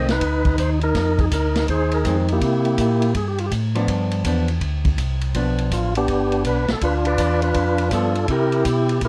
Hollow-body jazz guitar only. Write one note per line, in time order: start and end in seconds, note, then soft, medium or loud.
2.05 2.26 D#3 soft
2.05 2.27 G#3 medium
2.05 2.27 C4 medium
3.75 4.22 F3 medium
3.75 4.23 B3 medium
3.75 4.23 D4 medium
4.26 4.47 F3 medium
4.26 4.47 B3 medium
4.26 4.47 D4 medium
5.35 5.91 F3 medium
5.35 5.91 B3 medium
5.35 5.91 D4 medium
7.92 8.13 F3 medium
7.92 8.13 B3 medium
7.92 8.13 D4 medium